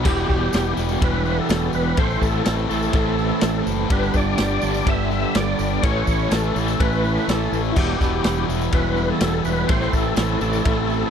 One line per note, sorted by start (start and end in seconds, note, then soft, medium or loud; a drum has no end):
0.05 0.24 E1 medium
0.05 0.53 E2 loud
0.05 0.54 B2 medium
0.05 0.31 E3 medium
0.05 0.30 G3 medium
0.05 1.97 G3 medium
0.05 1.97 B3 medium
0.05 0.29 B3 loud
0.05 1.97 E4 medium
0.05 0.27 G4 loud
0.05 0.28 G4 loud
0.05 1.96 B4 medium
0.05 kick loud
0.05 crash loud
0.17 tambourine soft
0.29 0.48 E1 medium
0.29 0.53 E3 medium
0.29 0.53 G3 medium
0.29 0.54 B3 medium
0.29 0.74 G4 loud
0.29 0.54 G4 medium
0.29 kick medium
0.53 0.72 E1 loud
0.53 0.78 E3 medium
0.53 0.77 G3 medium
0.53 0.77 B3 medium
0.53 0.76 G4 medium
0.53 snare loud
0.53 ride bell medium
0.53 tambourine loud
0.66 tambourine soft
0.77 0.96 E1 medium
0.77 1.26 E2 medium
0.77 1.25 B2 medium
0.77 1.00 E3 medium
0.77 1.00 G3 medium
0.77 1.01 B3 medium
0.77 1.01 G4 medium
0.77 tambourine medium
0.89 tambourine medium
1.01 1.38 E1 loud
1.01 1.96 E2 medium
1.01 1.96 B2 medium
1.01 1.25 E3 medium
1.01 1.25 G3 medium
1.01 1.24 B3 medium
1.01 1.24 G4 medium
1.01 1.40 B4 loud
1.01 kick loud
1.01 ride bell medium
1.25 1.74 E2 medium
1.25 1.74 B2 medium
1.25 1.48 E3 medium
1.25 1.49 G3 medium
1.25 1.49 B3 medium
1.25 1.50 G4 medium
1.25 tambourine soft
1.38 1.72 A4 medium
1.49 1.68 E1 medium
1.49 1.74 E3 medium
1.49 1.73 G3 medium
1.49 1.73 B3 medium
1.49 1.72 G4 medium
1.49 snare loud
1.49 ride bell medium
1.49 tambourine medium
1.73 1.92 E1 medium
1.73 1.97 E3 medium
1.73 1.97 G3 medium
1.73 1.96 B3 medium
1.73 1.96 G4 medium
1.73 1.99 B4 loud
1.73 tambourine medium
1.97 2.16 A1 medium
1.97 2.46 A2 medium
1.97 2.45 E3 loud
1.97 3.89 A3 medium
1.97 2.94 A3 loud
1.97 3.89 C4 medium
1.97 2.23 C4 loud
1.97 3.89 E4 medium
1.97 2.22 E4 loud
1.97 2.21 A4 loud
1.97 3.89 C5 medium
1.97 2.23 C5 loud
1.97 kick loud
1.97 ride bell medium
2.10 tambourine soft
2.21 2.40 A1 medium
2.21 2.46 C4 medium
2.21 2.47 E4 medium
2.21 2.43 A4 medium
2.21 2.47 A4 medium
2.21 kick medium
2.21 tambourine medium
2.45 2.65 A1 medium
2.45 2.70 E3 medium
2.45 2.69 C4 medium
2.45 2.69 E4 medium
2.45 2.56 A4 medium
2.45 2.68 A4 medium
2.45 snare loud
2.45 ride bell medium
2.45 tambourine medium
2.59 tambourine soft
2.69 2.89 A1 medium
2.69 3.18 A2 medium
2.69 2.92 E3 medium
2.69 3.89 A3 medium
2.69 2.93 C4 medium
2.69 2.94 E4 medium
2.69 3.62 A4 medium
2.69 2.94 A4 loud
2.69 tambourine medium
2.82 tambourine medium
2.93 3.31 A1 loud
2.93 3.88 A2 medium
2.93 3.18 E3 medium
2.93 3.90 A3 medium
2.93 3.17 C4 medium
2.93 3.17 E4 medium
2.93 3.16 A4 medium
2.93 kick loud
2.93 ride bell medium
2.93 tambourine soft
3.17 3.67 A2 medium
3.17 3.40 E3 medium
3.17 3.41 C4 medium
3.17 3.41 E4 loud
3.17 3.42 A4 medium
3.17 tambourine soft
3.41 3.61 A1 loud
3.41 3.89 E3 medium
3.41 3.66 C4 medium
3.41 3.65 E4 medium
3.41 3.64 A4 medium
3.41 snare loud
3.41 ride bell medium
3.41 tambourine loud
3.65 3.85 F#1 medium
3.65 3.90 C4 medium
3.65 3.89 E4 medium
3.65 3.89 A4 medium
3.65 tambourine medium
3.89 4.09 G1 loud
3.89 4.38 G2 medium
3.89 4.38 D3 loud
3.89 4.14 G3 loud
3.89 5.81 B3 medium
3.89 4.14 B3 medium
3.89 5.81 D4 medium
3.89 4.13 D4 loud
3.89 5.81 G4 medium
3.89 4.12 G4 loud
3.89 4.16 B4 medium
3.89 5.81 D5 medium
3.89 kick loud
3.89 ride bell medium
4.03 tambourine soft
4.14 4.33 G1 loud
4.14 4.37 G3 medium
4.14 4.37 B3 medium
4.14 4.38 D4 medium
4.14 4.39 G4 medium
4.14 4.90 D5 loud
4.14 kick medium
4.14 tambourine medium
4.38 4.57 G1 loud
4.38 4.63 G3 medium
4.38 4.62 B3 medium
4.38 4.62 D4 medium
4.38 4.61 G4 medium
4.38 snare loud
4.38 ride bell medium
4.38 tambourine loud
4.51 tambourine soft
4.61 4.81 G1 medium
4.61 5.12 G2 medium
4.61 5.11 D3 medium
4.61 4.85 G3 medium
4.61 4.86 B3 medium
4.61 4.87 D4 medium
4.61 4.87 G4 medium
4.61 tambourine medium
4.74 snare soft
4.74 tambourine medium
4.85 5.23 G1 loud
4.85 5.81 G2 medium
4.85 5.82 D3 medium
4.85 5.11 G3 medium
4.85 5.11 B3 medium
4.85 5.10 D4 medium
4.85 5.10 G4 medium
4.85 5.37 E5 loud
4.85 kick loud
4.85 ride bell medium
5.11 5.60 G2 medium
5.11 5.60 D3 medium
5.11 5.34 G3 medium
5.11 5.35 B3 medium
5.11 5.35 D4 medium
5.11 5.36 G4 loud
5.11 tambourine soft
5.35 5.53 G1 loud
5.35 5.60 G3 medium
5.35 5.60 B3 medium
5.35 5.59 D4 medium
5.35 5.58 G4 medium
5.35 5.85 D5 loud
5.35 snare loud
5.35 ride bell medium
5.35 tambourine medium
5.59 5.78 G1 medium
5.59 5.83 G3 medium
5.59 5.83 B3 medium
5.59 5.82 D4 medium
5.59 5.82 G4 medium
5.59 tambourine medium
5.82 6.02 A1 loud
5.82 6.31 A2 medium
5.82 6.31 E3 medium
5.82 7.74 A3 medium
5.82 6.08 A3 medium
5.82 7.74 C#4 medium
5.82 6.07 C#4 loud
5.82 7.74 E4 medium
5.82 6.07 E4 loud
5.82 7.74 C#5 medium
5.82 6.33 C#5 loud
5.82 kick loud
5.82 ride bell medium
5.82 tambourine soft
6.07 6.26 A1 medium
6.07 6.30 A3 medium
6.07 6.31 C#4 medium
6.07 6.33 E4 medium
6.07 kick medium
6.07 tambourine medium
6.19 tambourine soft
6.31 6.50 A1 loud
6.31 6.56 E3 medium
6.31 6.55 A3 medium
6.31 6.55 C#4 medium
6.31 6.55 E4 medium
6.31 6.82 A4 medium
6.31 snare loud
6.31 ride bell medium
6.31 tambourine medium
6.44 tambourine soft
6.55 6.74 A1 medium
6.55 7.03 A2 medium
6.55 6.79 E3 medium
6.55 6.79 A3 medium
6.55 6.80 C#4 medium
6.55 6.81 E4 medium
6.55 tambourine medium
6.68 snare soft
6.68 tambourine medium
6.79 7.17 A1 medium
6.79 7.74 A2 medium
6.79 7.04 E3 medium
6.79 7.03 A3 medium
6.79 7.02 C#4 medium
6.79 7.03 E4 medium
6.79 7.30 B4 loud
6.79 kick loud
6.79 ride bell medium
6.92 tambourine soft
7.03 7.53 A2 medium
7.03 7.27 E3 medium
7.03 7.27 A3 medium
7.03 7.28 C#4 medium
7.03 7.29 E4 medium
7.03 tambourine soft
7.18 tambourine soft
7.27 7.46 A1 medium
7.27 7.76 E3 medium
7.27 7.52 A3 medium
7.27 7.51 C#4 medium
7.27 7.51 E4 medium
7.27 7.63 A4 medium
7.27 snare loud
7.27 ride bell medium
7.27 tambourine medium
7.41 tambourine soft
7.51 7.71 A1 medium
7.51 7.75 A3 medium
7.51 7.75 C#4 medium
7.51 7.77 E4 medium
7.51 tambourine medium
7.65 tambourine soft
7.72 8.24 E2 loud
7.72 7.77 E4 medium
7.76 7.95 E1 medium
7.76 8.24 B2 medium
7.76 8.01 E3 medium
7.76 9.67 G3 medium
7.76 8.00 G3 loud
7.76 9.67 B3 medium
7.76 7.99 B3 loud
7.76 9.67 E4 medium
7.76 7.99 E4 loud
7.76 8.00 G4 medium
7.76 9.67 B4 medium
7.76 kick loud
7.76 crash loud
7.89 tambourine soft
8.00 8.19 E1 medium
8.00 8.23 E3 medium
8.00 8.23 G3 medium
8.00 8.24 B3 medium
8.00 8.26 E4 medium
8.00 8.46 G4 medium
8.00 kick medium
8.00 tambourine medium
8.24 8.43 E1 loud
8.24 8.49 E3 medium
8.24 8.48 G3 medium
8.24 8.47 B3 medium
8.24 8.47 E4 medium
8.24 snare loud
8.24 ride bell medium
8.24 tambourine medium
8.38 tambourine soft
8.48 8.67 E1 medium
8.48 8.97 E2 medium
8.48 8.97 B2 medium
8.48 8.71 E3 medium
8.48 8.72 G3 medium
8.48 8.72 B3 loud
8.48 8.73 E4 medium
8.48 tambourine medium
8.61 tambourine medium
8.72 9.10 E1 loud
8.72 9.67 E2 medium
8.72 9.68 B2 medium
8.72 8.96 E3 medium
8.72 8.96 G3 medium
8.72 8.96 B3 medium
8.72 8.95 E4 medium
8.72 9.02 B4 loud
8.72 kick loud
8.72 ride bell medium
8.72 tambourine soft
8.96 9.46 E2 medium
8.96 9.45 B2 medium
8.96 9.19 E3 medium
8.96 9.20 G3 medium
8.96 9.20 B3 medium
8.96 9.21 E4 medium
8.96 tambourine soft
9.03 9.10 B4 medium
9.10 9.43 A4 medium
9.20 9.39 E1 medium
9.20 9.45 E3 medium
9.20 9.44 G3 medium
9.20 9.44 B3 medium
9.20 9.43 E4 medium
9.20 snare loud
9.20 ride bell medium
9.20 tambourine loud
9.44 9.64 E1 medium
9.44 9.67 E3 medium
9.44 9.68 G3 medium
9.44 9.68 B3 medium
9.44 9.67 E4 medium
9.44 9.70 B4 loud
9.44 tambourine medium
9.68 9.88 A1 loud
9.68 10.17 A2 loud
9.68 10.14 E3 loud
9.68 9.93 A3 medium
9.68 11.10 A3 medium
9.68 11.10 C4 medium
9.68 9.92 C4 loud
9.68 11.10 E4 medium
9.68 9.90 E4 loud
9.68 11.10 C5 medium
9.68 9.94 C5 loud
9.68 kick loud
9.68 ride bell medium
9.82 snare soft
9.82 tambourine soft
9.91 10.12 A1 medium
9.91 10.15 A3 medium
9.91 10.16 C4 medium
9.91 10.16 E4 medium
9.91 10.16 A4 loud
9.91 kick medium
9.91 tambourine medium
10.15 10.36 A1 medium
10.15 10.40 E3 medium
10.15 10.40 A3 medium
10.15 10.39 C4 medium
10.15 10.39 E4 medium
10.15 10.40 A4 medium
10.15 snare loud
10.15 ride bell medium
10.15 tambourine loud
10.29 tambourine soft
10.40 10.60 A1 medium
10.40 10.90 A2 medium
10.40 10.63 E3 medium
10.40 10.64 A3 medium
10.40 10.65 C4 medium
10.40 10.65 E4 loud
10.40 11.10 A4 loud
10.40 tambourine medium
10.53 tambourine medium
10.64 11.02 A1 loud
10.64 11.10 A2 medium
10.64 10.90 E3 medium
10.64 10.90 A3 medium
10.64 10.89 C4 medium
10.64 10.88 E4 medium
10.64 kick loud
10.64 ride bell medium
10.90 11.10 A2 medium
10.90 11.10 E3 medium
10.90 11.10 A3 medium
10.90 11.10 C4 medium
10.90 11.10 E4 medium
10.90 tambourine soft